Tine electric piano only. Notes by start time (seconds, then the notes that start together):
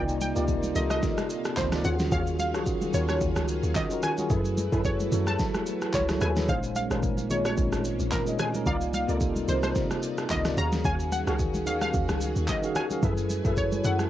Already playing: C3 A#3 D#4 F4 D5
0.35 C3 A#3 D#4 F4 D5
0.74 C3 A#3 D#4 F4 A4
1.72 C3 A#3 D#4 F4 D5
1.84 D#3 C#4 F4 F#4 G#4
2.53 D#3 C#4 F4 F#4 G#4
2.93 D#3 C#4 F4 F#4 A#4
3.90 D#3 C#4 F4 F#4 A#4
4.17 D#3 C#4 F4 F#4 G#4
4.29 F#3 E4 G#4 A4 B4
4.71 F#3 E4 G#4 A4 B4
5.11 F#3 E4 F#4 A4 C#5
6.08 F#3 E4 G#4 A4 C#5
6.35 F#3 E4 G#4 A4 B4
6.48 A#2 G#3 C#4 D#4 C5
6.90 A#2 G#3 C#4 D#4 A#4
7.29 A#2 G#3 C4 D#4 F4
7.37 C#4
8.26 A#2 G#3 C#4 D#4 D#5
8.53 A#2 G#3 C#4 D#4 A#4
8.66 C3 A#3 D#4 F4 D5
9.08 C3 A#3 D#4 F4 A4
9.48 C3 A#3 D#4 F4 A#4
10.44 C3 A#3 D#4 F4 D5
10.57 D#3 C#4 F#4 G#4 F5
11.26 D#3 C#4 F#4 G#4 G#5
11.65 D#3 C#4 F#4 G#4 F5
12.62 D#3 C#4 F#4 G#4 F5
12.89 D#3 C#4 F#4 G#4 F5
13.02 F#3 E4 G#4 A4 B4
13.44 F#3 E4 G#4 A4 B4
13.84 F#3 E4 G#4 A4 C#5